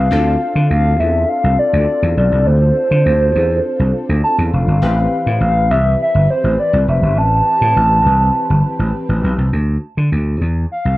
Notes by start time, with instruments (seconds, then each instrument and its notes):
Already playing: soft synth lead F5
0.11 slap bass D2, analog polysynth C4 D4 F4 A4
0.55 slap bass D3
0.70 slap bass D2, soft synth lead F5
1.00 slap bass E2, soft synth lead E5
1.29 soft synth lead F5
1.44 slap bass C2
1.59 soft synth lead D5
1.73 slap bass D2
2.03 slap bass E2
2.17 slap bass B1, soft synth lead D5
2.32 slap bass C2
2.47 slap bass D2, soft synth lead C5
2.91 slap bass D3
3.06 slap bass D2
3.36 slap bass E2
3.79 slap bass C2
4.09 slap bass D2
4.24 soft synth lead A5
4.38 slap bass E2
4.53 slap bass F1, soft synth lead F5
4.68 slap bass G1
4.82 slap bass A1, analog polysynth E3 C4 G4 B4
5.26 slap bass A2
5.41 slap bass A1, soft synth lead F5
5.71 slap bass C2, soft synth lead E5
6.02 soft synth lead E5
6.15 slap bass G1
6.31 soft synth lead C5
6.44 slap bass A1
6.60 soft synth lead D5
6.73 slap bass C2
6.88 slap bass F1, soft synth lead E5
7.02 slap bass G1
7.17 slap bass A1, soft synth lead A5
7.61 slap bass A2
7.76 slap bass A1
8.06 slap bass C2
8.50 slap bass G1
8.79 slap bass A1
9.09 slap bass A1
9.24 slap bass B1
9.38 slap bass C2
9.53 slap bass D2
9.97 slap bass D3
10.12 slap bass D2
10.41 slap bass E2
10.72 soft synth lead F5
10.85 slap bass C2